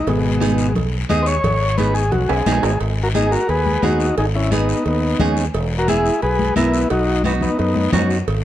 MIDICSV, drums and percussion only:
0, 0, Header, 1, 2, 480
1, 0, Start_track
1, 0, Key_signature, 5, "minor"
1, 0, Tempo, 341686
1, 107, Time_signature, 4, 2, 24, 8
1, 11856, End_track
2, 0, Start_track
2, 0, Title_t, "Drums"
2, 96, Note_on_c, 9, 74, 73
2, 101, Note_on_c, 9, 63, 30
2, 105, Note_on_c, 9, 56, 111
2, 236, Note_off_c, 9, 74, 0
2, 241, Note_off_c, 9, 63, 0
2, 246, Note_off_c, 9, 56, 0
2, 579, Note_on_c, 9, 63, 77
2, 583, Note_on_c, 9, 73, 77
2, 592, Note_on_c, 9, 56, 67
2, 719, Note_off_c, 9, 63, 0
2, 724, Note_off_c, 9, 73, 0
2, 732, Note_off_c, 9, 56, 0
2, 816, Note_on_c, 9, 73, 66
2, 957, Note_off_c, 9, 73, 0
2, 1058, Note_on_c, 9, 74, 71
2, 1062, Note_on_c, 9, 63, 33
2, 1062, Note_on_c, 9, 64, 83
2, 1072, Note_on_c, 9, 56, 90
2, 1199, Note_off_c, 9, 74, 0
2, 1202, Note_off_c, 9, 63, 0
2, 1202, Note_off_c, 9, 64, 0
2, 1212, Note_off_c, 9, 56, 0
2, 1541, Note_on_c, 9, 63, 92
2, 1541, Note_on_c, 9, 73, 63
2, 1559, Note_on_c, 9, 56, 67
2, 1681, Note_off_c, 9, 73, 0
2, 1682, Note_off_c, 9, 63, 0
2, 1700, Note_off_c, 9, 56, 0
2, 1775, Note_on_c, 9, 73, 76
2, 1915, Note_off_c, 9, 73, 0
2, 2020, Note_on_c, 9, 74, 81
2, 2023, Note_on_c, 9, 63, 32
2, 2023, Note_on_c, 9, 64, 72
2, 2029, Note_on_c, 9, 56, 124
2, 2161, Note_off_c, 9, 74, 0
2, 2164, Note_off_c, 9, 63, 0
2, 2164, Note_off_c, 9, 64, 0
2, 2169, Note_off_c, 9, 56, 0
2, 2497, Note_on_c, 9, 63, 91
2, 2502, Note_on_c, 9, 73, 76
2, 2507, Note_on_c, 9, 56, 63
2, 2638, Note_off_c, 9, 63, 0
2, 2642, Note_off_c, 9, 73, 0
2, 2647, Note_off_c, 9, 56, 0
2, 2738, Note_on_c, 9, 73, 72
2, 2878, Note_off_c, 9, 73, 0
2, 2975, Note_on_c, 9, 74, 62
2, 2980, Note_on_c, 9, 63, 33
2, 2980, Note_on_c, 9, 64, 77
2, 2981, Note_on_c, 9, 56, 76
2, 3116, Note_off_c, 9, 74, 0
2, 3120, Note_off_c, 9, 63, 0
2, 3120, Note_off_c, 9, 64, 0
2, 3122, Note_off_c, 9, 56, 0
2, 3223, Note_on_c, 9, 65, 96
2, 3364, Note_off_c, 9, 65, 0
2, 3459, Note_on_c, 9, 56, 69
2, 3461, Note_on_c, 9, 63, 94
2, 3463, Note_on_c, 9, 73, 68
2, 3538, Note_on_c, 9, 66, 74
2, 3600, Note_off_c, 9, 56, 0
2, 3601, Note_off_c, 9, 63, 0
2, 3603, Note_off_c, 9, 73, 0
2, 3679, Note_off_c, 9, 66, 0
2, 3696, Note_on_c, 9, 66, 109
2, 3708, Note_on_c, 9, 73, 82
2, 3837, Note_off_c, 9, 66, 0
2, 3848, Note_off_c, 9, 73, 0
2, 3940, Note_on_c, 9, 56, 109
2, 3942, Note_on_c, 9, 74, 76
2, 4081, Note_off_c, 9, 56, 0
2, 4083, Note_off_c, 9, 74, 0
2, 4421, Note_on_c, 9, 63, 76
2, 4424, Note_on_c, 9, 73, 70
2, 4562, Note_off_c, 9, 63, 0
2, 4564, Note_off_c, 9, 73, 0
2, 4667, Note_on_c, 9, 73, 68
2, 4808, Note_off_c, 9, 73, 0
2, 4896, Note_on_c, 9, 74, 63
2, 4903, Note_on_c, 9, 56, 87
2, 5037, Note_off_c, 9, 74, 0
2, 5044, Note_off_c, 9, 56, 0
2, 5143, Note_on_c, 9, 63, 73
2, 5284, Note_off_c, 9, 63, 0
2, 5378, Note_on_c, 9, 63, 92
2, 5380, Note_on_c, 9, 73, 65
2, 5518, Note_off_c, 9, 63, 0
2, 5520, Note_off_c, 9, 73, 0
2, 5618, Note_on_c, 9, 73, 82
2, 5759, Note_off_c, 9, 73, 0
2, 5867, Note_on_c, 9, 56, 110
2, 5869, Note_on_c, 9, 74, 82
2, 6007, Note_off_c, 9, 56, 0
2, 6010, Note_off_c, 9, 74, 0
2, 6342, Note_on_c, 9, 63, 76
2, 6347, Note_on_c, 9, 73, 72
2, 6482, Note_off_c, 9, 63, 0
2, 6488, Note_off_c, 9, 73, 0
2, 6588, Note_on_c, 9, 73, 73
2, 6729, Note_off_c, 9, 73, 0
2, 6820, Note_on_c, 9, 74, 69
2, 6823, Note_on_c, 9, 56, 81
2, 6960, Note_off_c, 9, 74, 0
2, 6964, Note_off_c, 9, 56, 0
2, 7298, Note_on_c, 9, 63, 96
2, 7298, Note_on_c, 9, 64, 89
2, 7298, Note_on_c, 9, 73, 67
2, 7438, Note_off_c, 9, 73, 0
2, 7439, Note_off_c, 9, 63, 0
2, 7439, Note_off_c, 9, 64, 0
2, 7540, Note_on_c, 9, 73, 80
2, 7680, Note_off_c, 9, 73, 0
2, 7781, Note_on_c, 9, 74, 72
2, 7790, Note_on_c, 9, 56, 106
2, 7921, Note_off_c, 9, 74, 0
2, 7930, Note_off_c, 9, 56, 0
2, 8260, Note_on_c, 9, 63, 76
2, 8263, Note_on_c, 9, 73, 76
2, 8400, Note_off_c, 9, 63, 0
2, 8404, Note_off_c, 9, 73, 0
2, 8508, Note_on_c, 9, 73, 68
2, 8648, Note_off_c, 9, 73, 0
2, 8743, Note_on_c, 9, 56, 83
2, 8743, Note_on_c, 9, 74, 68
2, 8884, Note_off_c, 9, 56, 0
2, 8884, Note_off_c, 9, 74, 0
2, 8980, Note_on_c, 9, 63, 77
2, 9121, Note_off_c, 9, 63, 0
2, 9214, Note_on_c, 9, 63, 95
2, 9224, Note_on_c, 9, 73, 68
2, 9354, Note_off_c, 9, 63, 0
2, 9364, Note_off_c, 9, 73, 0
2, 9461, Note_on_c, 9, 73, 77
2, 9602, Note_off_c, 9, 73, 0
2, 9697, Note_on_c, 9, 56, 114
2, 9701, Note_on_c, 9, 74, 75
2, 9838, Note_off_c, 9, 56, 0
2, 9842, Note_off_c, 9, 74, 0
2, 10170, Note_on_c, 9, 63, 81
2, 10188, Note_on_c, 9, 73, 68
2, 10311, Note_off_c, 9, 63, 0
2, 10329, Note_off_c, 9, 73, 0
2, 10407, Note_on_c, 9, 64, 69
2, 10430, Note_on_c, 9, 73, 67
2, 10547, Note_off_c, 9, 64, 0
2, 10571, Note_off_c, 9, 73, 0
2, 10663, Note_on_c, 9, 56, 84
2, 10666, Note_on_c, 9, 74, 67
2, 10803, Note_off_c, 9, 56, 0
2, 10807, Note_off_c, 9, 74, 0
2, 10895, Note_on_c, 9, 63, 74
2, 11035, Note_off_c, 9, 63, 0
2, 11134, Note_on_c, 9, 63, 78
2, 11134, Note_on_c, 9, 64, 92
2, 11143, Note_on_c, 9, 73, 70
2, 11154, Note_on_c, 9, 66, 76
2, 11274, Note_off_c, 9, 63, 0
2, 11274, Note_off_c, 9, 64, 0
2, 11284, Note_off_c, 9, 73, 0
2, 11294, Note_off_c, 9, 66, 0
2, 11384, Note_on_c, 9, 73, 79
2, 11524, Note_off_c, 9, 73, 0
2, 11629, Note_on_c, 9, 56, 103
2, 11630, Note_on_c, 9, 74, 81
2, 11769, Note_off_c, 9, 56, 0
2, 11771, Note_off_c, 9, 74, 0
2, 11856, End_track
0, 0, End_of_file